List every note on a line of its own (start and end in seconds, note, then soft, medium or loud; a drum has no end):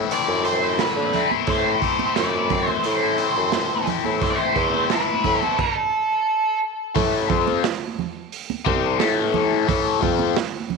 0.00 0.79 A2 medium
0.00 0.11 E3 medium
0.00 0.12 A3 medium
0.00 0.13 C4 medium
0.00 0.13 E4 medium
0.11 0.45 E3 medium
0.11 0.31 A3 medium
0.11 0.30 C4 medium
0.11 0.29 E4 medium
0.11 0.44 D5 medium
0.11 open hi-hat medium
0.28 0.88 F#2 medium
0.28 0.46 A3 medium
0.28 0.46 C4 medium
0.28 0.48 E4 medium
0.45 0.79 E3 medium
0.45 0.63 A3 medium
0.45 0.62 C4 medium
0.45 0.62 E4 medium
0.45 0.77 C5 medium
0.45 open hi-hat medium
0.62 0.80 A3 medium
0.62 0.81 C4 medium
0.62 0.82 E4 medium
0.79 1.49 A2 medium
0.79 1.13 E3 medium
0.79 1.15 A3 medium
0.79 1.15 C4 medium
0.79 1.16 E4 loud
0.79 1.28 B4 medium
0.79 snare loud
0.79 open hi-hat medium
0.96 1.26 D3 medium
1.13 1.49 E3 medium
1.13 1.33 A3 medium
1.13 1.31 C4 medium
1.13 1.30 E4 medium
1.13 open hi-hat medium
1.13 low conga medium
1.30 1.50 A3 medium
1.30 1.50 C4 medium
1.30 1.51 E4 medium
1.30 high conga medium
1.47 1.77 A2 medium
1.47 2.16 A2 medium
1.47 1.81 E3 medium
1.47 1.82 A3 medium
1.47 1.82 C4 loud
1.47 2.13 C5 medium
1.47 kick loud
1.47 open hi-hat medium
1.51 1.83 E4 loud
1.81 2.16 E3 medium
1.81 2.00 A3 medium
1.81 1.99 C4 medium
1.81 1.98 E4 medium
1.81 kick medium
1.81 open hi-hat soft
1.98 2.17 A3 medium
1.98 2.17 C4 medium
1.98 2.17 E4 medium
1.98 high conga medium
2.16 2.77 F#2 medium
2.16 3.52 A2 medium
2.16 2.50 E3 medium
2.16 2.51 A3 medium
2.16 2.51 C4 medium
2.16 2.52 E4 medium
2.16 2.69 D5 medium
2.16 snare loud
2.16 open hi-hat medium
2.50 2.84 E3 medium
2.50 2.84 A3 medium
2.50 2.86 C4 medium
2.50 2.86 E4 medium
2.50 kick medium
2.50 open hi-hat soft
2.50 high conga medium
2.50 low conga medium
2.68 2.87 C5 medium
2.68 high conga medium
2.84 3.30 A2 loud
2.84 3.18 E3 medium
2.84 3.04 A3 medium
2.84 3.03 C4 medium
2.84 3.02 E4 medium
2.84 3.84 C5 medium
2.84 open hi-hat medium
3.03 3.19 A3 medium
3.03 3.19 C4 medium
3.03 3.20 E4 medium
3.18 3.53 E3 medium
3.18 3.36 A3 medium
3.18 3.36 C4 medium
3.18 3.34 E4 medium
3.18 open hi-hat soft
3.35 3.67 F#2 medium
3.35 3.53 A3 medium
3.35 3.53 C4 medium
3.35 3.53 E4 medium
3.52 4.20 A2 medium
3.52 3.88 E3 medium
3.52 3.88 A3 medium
3.52 3.88 C4 medium
3.52 3.89 E4 medium
3.52 snare loud
3.52 open hi-hat medium
3.87 4.21 E3 medium
3.87 4.06 A3 medium
3.87 4.05 C4 medium
3.87 4.04 E4 medium
3.87 open hi-hat soft
3.87 low conga medium
4.05 4.35 A2 medium
4.05 4.21 A3 medium
4.05 4.22 C4 medium
4.05 4.22 E4 medium
4.05 high conga medium
4.22 4.89 A2 medium
4.22 4.55 E3 medium
4.22 4.56 A3 loud
4.22 4.56 C4 medium
4.22 4.57 E4 medium
4.22 4.29 C5 medium
4.22 kick loud
4.22 open hi-hat medium
4.30 4.37 D5 medium
4.36 4.86 C5 medium
4.56 4.86 E2 medium
4.56 4.89 E3 medium
4.56 4.74 A3 medium
4.56 4.73 C4 medium
4.56 4.72 E4 medium
4.56 kick medium
4.56 open hi-hat soft
4.73 4.90 A3 medium
4.73 4.91 C4 medium
4.73 4.91 E4 medium
4.73 high conga medium
4.90 5.56 A2 medium
4.90 5.24 E3 medium
4.90 5.24 A3 loud
4.90 5.25 C4 medium
4.90 5.26 E4 loud
4.90 5.40 B4 medium
4.90 snare loud
4.90 open hi-hat medium
5.24 5.40 A2 medium
5.24 5.57 E3 medium
5.24 5.57 A3 medium
5.24 5.57 C4 medium
5.24 5.58 E4 medium
5.24 kick medium
5.24 open hi-hat soft
5.24 high conga medium
5.24 low conga medium
5.40 5.56 A4 medium
5.40 high conga medium
5.59 6.58 A4 medium
5.59 kick loud
5.59 crash medium
6.95 7.28 A2 loud
6.95 7.27 A2 medium
6.95 7.28 E3 loud
6.95 7.29 A3 loud
6.95 kick loud
6.95 open hi-hat medium
6.95 low conga medium
7.29 7.61 F2 medium
7.29 7.62 F3 medium
7.29 7.63 C4 loud
7.29 7.63 F4 medium
7.29 kick loud
7.29 low conga medium
7.47 high conga medium
7.64 snare loud
7.64 open hi-hat medium
7.99 low conga medium
8.32 open hi-hat medium
8.50 high conga medium
8.65 8.98 C2 loud
8.65 8.98 C3 loud
8.65 8.99 G3 medium
8.65 8.99 C4 loud
8.65 kick loud
8.65 high conga medium
8.99 9.67 A2 medium
8.99 9.64 A2 loud
8.99 9.66 E3 loud
8.99 9.67 A3 medium
8.99 snare loud
8.99 open hi-hat medium
9.34 high conga medium
9.34 low conga medium
9.67 10.01 A2 loud
9.67 10.00 A2 medium
9.67 10.01 E3 medium
9.67 10.01 A3 loud
9.67 kick loud
9.67 open hi-hat medium
9.67 low conga medium
10.01 10.34 F2 medium
10.01 10.35 F3 medium
10.01 10.35 C4 loud
10.01 10.35 F4 loud
10.01 kick loud
10.01 low conga medium
10.19 high conga medium
10.37 snare loud
10.37 open hi-hat medium
10.70 low conga medium